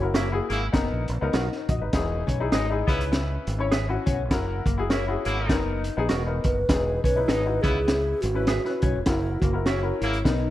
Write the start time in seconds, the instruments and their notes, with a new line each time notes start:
Already playing: fingered electric bass F#1, alto flute F#4
0.02 upright piano E4 F#4 A#4
0.14 horn section C#3 A#3 E4, hollow-body jazz guitar A#3, clean electric guitar F#4 A#4 E5, snare, closed hi-hat
0.32 upright piano E4 F#4 G#4
0.50 fingered electric bass G#1, horn section C#3 A#3 E4, closed hi-hat
0.72 fingered electric bass F#1, upright piano B3 D#4 A#4, hollow-body jazz guitar B3, kick, snare, closed hi-hat
0.92 fingered electric bass A#1
1.08 fingered electric bass A#1, closed hi-hat
1.21 fingered electric bass C#2, upright piano B3 D#4 A#4
1.33 fingered electric bass B1, hollow-body jazz guitar D#4, clean electric guitar F#4 A#4 D#5, upright piano A#4 F#5, snare, closed hi-hat
1.52 snare
1.69 fingered electric bass A#1, upright piano F#4 D#5, kick, closed hi-hat
1.81 fingered electric bass G#1, upright piano D#4 B4
1.93 fingered electric bass E1, upright piano E3 D#4 E4 G#4, kick, snare, closed hi-hat
2.27 fingered electric bass B1, hollow-body jazz guitar C#4, kick, closed hi-hat
2.40 upright piano D#4 E4 G#4
2.52 fingered electric bass G#1, horn section B2 G#3 D#4, hollow-body jazz guitar D#4, clean electric guitar G#4 B4 D#5, snare, closed hi-hat
2.70 upright piano D#4 E4 G#4
2.87 fingered electric bass C#2, horn section C#3 B3 E4, upright piano C#3 C#4 E4 B4, kick, closed hi-hat
3.01 closed hi-hat
3.12 hollow-body jazz guitar E4, snare, closed hi-hat
3.47 fingered electric bass G#1, closed hi-hat
3.59 upright piano C#4 E4 C#5
3.72 clean electric guitar G#4 B4 E5, snare, closed hi-hat
3.89 upright piano C#4 E4 F#4
4.06 fingered electric bass B1, hollow-body jazz guitar C#4, kick, closed hi-hat
4.31 fingered electric bass F#1, upright piano E4 F#4 A#4, kick, snare, closed hi-hat
4.66 fingered electric bass F#1, hollow-body jazz guitar A#3, kick, closed hi-hat
4.78 upright piano E4 F#4 G#4
4.90 horn section C#3 A#3 E4, hollow-body jazz guitar C#4, clean electric guitar F#4 A#4 E5, snare, closed hi-hat
5.08 upright piano E4 F#4 G#4
5.25 fingered electric bass G#1, horn section B2 A#3 E4, closed hi-hat
5.49 fingered electric bass F#1, upright piano B3 D#4 A#4, hollow-body jazz guitar D#4, kick, snare, closed hi-hat
5.84 closed hi-hat
5.97 fingered electric bass A#1, upright piano B3 D#4 G#4
6.09 fingered electric bass E1, hollow-body jazz guitar B3, clean electric guitar F#4 A#4 D#5, snare, closed hi-hat
6.26 upright piano B3 D#4 A#4
6.44 fingered electric bass F#1, alto flute B4, kick, closed hi-hat
6.69 fingered electric bass E1, upright piano E3 D#4 E4 G#4, kick, snare, closed hi-hat
7.04 fingered electric bass B1, hollow-body jazz guitar C#4, alto flute B4, kick, closed hi-hat
7.16 upright piano D#4 E4 B4
7.28 fingered electric bass G#1, horn section B2 G#3 D#4, hollow-body jazz guitar D#4, clean electric guitar E4 G#4 D#5, snare, closed hi-hat
7.46 upright piano D#4 E4 F#4
7.62 fingered electric bass C#2, horn section C#3 B3 E4, upright piano C#3 C#4 E4 B4, alto flute G#4, kick, closed hi-hat
7.88 hollow-body jazz guitar E4, snare, closed hi-hat
8.21 fingered electric bass G#1, alto flute F#4, closed hi-hat
8.35 upright piano C#4 E4 B4
8.47 clean electric guitar G#4 B4 E5, snare, closed hi-hat
8.65 upright piano C#4 E4 B4, snare
8.82 fingered electric bass B1, hollow-body jazz guitar C#4, kick, closed hi-hat
8.95 fingered electric bass E1
9.05 fingered electric bass F#1, alto flute E4, upright piano E4 F#4 A#4, kick, snare, closed hi-hat
9.40 fingered electric bass F#1, hollow-body jazz guitar A#3, alto flute F#4, kick, closed hi-hat
9.53 upright piano E4 F#4 A#4
9.65 horn section C#3 A#3 E4, hollow-body jazz guitar C#4, alto flute F#4, clean electric guitar F#4 A#4 E5, snare, closed hi-hat
9.83 upright piano E4 F#4 A#4
10.00 fingered electric bass G#1, horn section C#3 A#3 E4, alto flute E4, closed hi-hat
10.13 closed hi-hat
10.24 fingered electric bass B1, upright piano B2 B3 D#4 A#4, alto flute D#4, hollow-body jazz guitar D#4, kick, snare, closed hi-hat